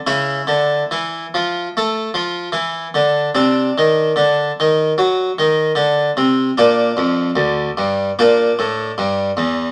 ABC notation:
X:1
M:4/4
L:1/8
Q:1/4=75
K:Dm
V:1 name="Harpsichord"
E8 | D8 | D4 D4 |]
V:2 name="Harpsichord" clef=bass
^C, D, E, F, A, F, E, D, | C, _E, D, E, ^F, E, D, C, | B,, F,, D,, G,, B,, A,, G,, E,, |]